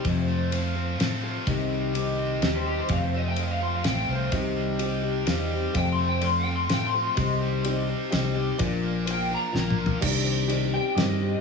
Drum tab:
CC |---------|---------|---------|---------|
RD |x--x--x--|x--x--x--|x--x--x--|x--x--x--|
SD |------o--|------o--|------o--|------o--|
T2 |---------|---------|---------|---------|
FT |---------|---------|---------|---------|
BD |o--------|o--------|o--------|o--------|

CC |---------|---------|---------|x--------|
RD |x--x--x--|x--x--x--|x--x-----|---x--x--|
SD |------o--|------o--|------o--|------o--|
T2 |---------|---------|-------o-|---------|
FT |---------|---------|--------o|---------|
BD |o--------|o--------|o--------|o--------|